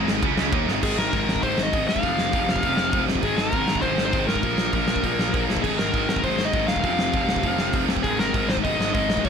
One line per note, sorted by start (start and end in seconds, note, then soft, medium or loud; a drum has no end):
0.00 0.21 G#1 loud
0.00 0.23 G#2 loud
0.00 0.22 D#3 loud
0.00 0.22 G#3 loud
0.08 snare loud
0.22 0.51 C#2 loud
0.22 0.52 C#3 medium
0.22 0.53 G#3 loud
0.22 0.53 C#4 loud
0.22 kick loud
0.22 ride medium
0.38 snare loud
0.52 0.67 D#2 loud
0.52 0.67 D#3 medium
0.52 0.68 A#3 loud
0.52 0.68 D#4 medium
0.52 kick loud
0.52 ride medium
0.67 0.82 G#1 medium
0.67 0.83 G#2 medium
0.67 0.83 D#3 loud
0.67 0.83 G#3 medium
0.67 snare medium
0.83 0.97 G#1 medium
0.83 1.14 G#2 loud
0.83 1.13 D#3 loud
0.83 1.13 G#3 loud
0.83 0.98 G#4 loud
0.83 kick loud
0.83 crash loud
0.97 1.12 G#1 medium
0.97 1.43 A#4 loud
0.97 snare loud
1.13 1.26 G#1 medium
1.13 1.43 G#2 medium
1.13 1.43 D#3 medium
1.13 1.44 G#3 loud
1.13 kick loud
1.13 open hi-hat medium
1.27 1.42 G#1 medium
1.27 snare loud
1.36 kick medium
1.43 1.57 G#1 medium
1.43 1.74 G#2 medium
1.43 1.74 D#3 medium
1.43 1.74 G#3 medium
1.43 1.64 C5 loud
1.43 kick loud
1.43 open hi-hat medium
1.57 1.72 G#1 medium
1.57 snare loud
1.63 1.85 D#5 loud
1.73 1.87 G#1 medium
1.73 2.03 G#2 medium
1.73 2.03 D#3 medium
1.73 2.04 G#3 medium
1.73 kick loud
1.73 open hi-hat medium
1.88 2.03 G#1 loud
1.88 3.04 F5 loud
1.88 snare loud
1.96 kick medium
2.03 2.17 F1 medium
2.03 2.33 F2 medium
2.03 2.33 C3 loud
2.03 2.33 F3 loud
2.03 kick medium
2.03 open hi-hat medium
2.18 2.33 F1 medium
2.18 snare loud
2.33 2.47 F1 medium
2.33 2.63 F2 medium
2.33 2.63 C3 medium
2.33 2.64 F3 medium
2.33 kick loud
2.33 open hi-hat medium
2.47 2.62 F1 medium
2.47 snare loud
2.56 kick medium
2.63 2.77 F1 medium
2.63 2.93 F2 medium
2.63 2.93 C3 medium
2.63 2.92 F3 medium
2.63 kick loud
2.63 open hi-hat medium
2.77 2.92 F1 medium
2.77 snare loud
2.93 3.08 F1 loud
2.93 3.23 F2 medium
2.93 3.23 C3 medium
2.93 3.23 F3 medium
2.93 kick loud
2.93 open hi-hat medium
3.08 3.22 F1 medium
3.08 snare loud
3.15 kick medium
3.23 3.37 G#1 medium
3.23 3.53 G#2 medium
3.23 3.53 D#3 loud
3.23 3.52 G#3 loud
3.23 3.37 G#4 loud
3.23 kick loud
3.23 open hi-hat medium
3.37 3.52 G#1 medium
3.37 3.81 A#4 loud
3.37 snare loud
3.52 3.67 G#1 loud
3.52 3.83 G#2 medium
3.52 3.84 D#3 medium
3.52 3.84 G#3 loud
3.52 kick loud
3.52 open hi-hat medium
3.68 3.82 G#1 medium
3.68 snare loud
3.75 kick medium
3.82 3.97 G#1 medium
3.82 4.15 G#2 medium
3.82 4.15 D#3 medium
3.82 4.15 G#3 medium
3.82 4.04 C5 loud
3.82 kick medium
3.82 open hi-hat medium
3.98 4.13 G#1 medium
3.98 snare loud
4.05 4.27 C5 medium
4.13 4.27 G#1 loud
4.13 4.43 D#3 medium
4.13 4.44 G#3 medium
4.13 kick loud
4.13 open hi-hat medium
4.17 4.44 G#2 medium
4.27 4.42 G#1 loud
4.27 5.44 A#4 medium
4.27 snare loud
4.36 kick medium
4.43 4.58 A#1 medium
4.43 4.74 A#2 loud
4.43 4.74 F3 loud
4.43 4.73 A#3 loud
4.43 kick loud
4.43 open hi-hat medium
4.58 4.73 A#1 medium
4.58 snare loud
4.73 4.88 A#1 medium
4.73 5.04 A#2 medium
4.73 5.05 F3 medium
4.73 5.05 A#3 medium
4.73 kick loud
4.73 open hi-hat medium
4.88 5.03 A#1 medium
4.88 snare loud
4.96 kick medium
5.03 5.18 A#1 medium
5.03 5.35 A#2 medium
5.03 5.34 F3 medium
5.03 5.33 A#3 medium
5.03 kick medium
5.03 open hi-hat medium
5.19 5.33 A#1 medium
5.19 snare loud
5.34 5.48 A#1 medium
5.34 5.64 A#2 medium
5.34 5.64 F3 medium
5.34 5.63 A#3 medium
5.34 kick loud
5.34 open hi-hat medium
5.48 5.63 A#1 medium
5.48 snare loud
5.57 kick medium
5.63 5.78 G#1 medium
5.63 5.95 G#2 medium
5.63 5.95 D#3 loud
5.63 5.95 G#3 loud
5.63 5.79 G#4 medium
5.63 kick medium
5.63 crash medium
5.79 5.93 G#1 medium
5.79 6.08 A#4 loud
5.79 snare loud
5.93 6.08 G#1 medium
5.93 6.23 G#2 medium
5.93 6.23 D#3 medium
5.93 6.25 G#3 medium
5.93 kick loud
5.93 open hi-hat medium
6.08 6.23 G#1 medium
6.08 6.24 A#4 medium
6.08 snare loud
6.16 kick medium
6.23 6.38 G#1 medium
6.23 6.54 G#2 medium
6.23 6.54 D#3 medium
6.23 6.54 G#3 medium
6.23 6.47 C5 medium
6.23 kick loud
6.23 open hi-hat medium
6.39 6.53 G#1 medium
6.39 snare loud
6.45 6.67 D#5 loud
6.53 6.68 G#1 medium
6.53 6.84 G#2 medium
6.53 6.84 D#3 medium
6.53 6.86 G#3 loud
6.53 kick loud
6.53 open hi-hat medium
6.68 6.84 E1 medium
6.68 7.85 F5 loud
6.68 snare loud
6.76 kick medium
6.84 6.98 F1 medium
6.84 7.15 F2 loud
6.84 7.15 C3 loud
6.84 7.14 F3 loud
6.84 kick medium
6.84 open hi-hat medium
6.99 7.13 F1 medium
6.99 snare loud
7.13 7.28 F1 medium
7.13 7.43 F2 medium
7.13 7.44 C3 medium
7.13 7.45 F3 loud
7.13 kick loud
7.13 open hi-hat medium
7.29 7.43 F1 medium
7.29 snare loud
7.36 kick medium
7.43 7.58 F1 medium
7.43 7.75 F2 medium
7.43 7.74 C3 medium
7.43 7.74 F3 medium
7.43 kick loud
7.43 open hi-hat medium
7.58 7.73 F1 medium
7.58 snare loud
7.73 7.88 F1 loud
7.73 8.04 F2 medium
7.73 8.04 C3 medium
7.73 8.04 F3 medium
7.73 kick loud
7.73 open hi-hat medium
7.88 8.03 F1 medium
7.88 snare loud
7.97 kick medium
8.03 8.18 G#1 medium
8.03 8.34 G#2 loud
8.03 8.34 D#3 loud
8.03 8.34 G#3 loud
8.03 8.19 G#4 medium
8.03 kick loud
8.03 open hi-hat medium
8.19 8.33 G#1 medium
8.19 8.51 A#4 loud
8.19 snare loud
8.34 8.47 G#1 medium
8.34 8.65 G#2 medium
8.34 8.65 D#3 loud
8.34 8.66 G#3 loud
8.34 kick loud
8.34 open hi-hat medium
8.48 8.63 G#1 medium
8.48 8.54 C5 medium
8.48 snare loud
8.57 kick medium
8.63 8.78 G#1 medium
8.63 8.95 G#2 medium
8.63 8.95 D#3 medium
8.63 8.94 G#3 medium
8.63 8.93 D#5 medium
8.63 kick loud
8.63 open hi-hat medium
8.79 8.94 G#1 medium
8.79 snare loud
8.94 9.08 G#1 loud
8.94 9.25 G#2 medium
8.94 9.24 D#3 medium
8.94 9.24 G#3 medium
8.94 9.25 D#5 loud
8.94 kick loud
8.94 open hi-hat medium
9.09 9.24 A1 medium
9.09 snare loud
9.17 kick medium
9.24 9.29 A#1 medium
9.24 9.29 A#2 medium
9.24 9.29 F3 loud
9.24 9.29 A#3 loud
9.24 9.29 C#5 medium
9.24 kick medium
9.24 open hi-hat medium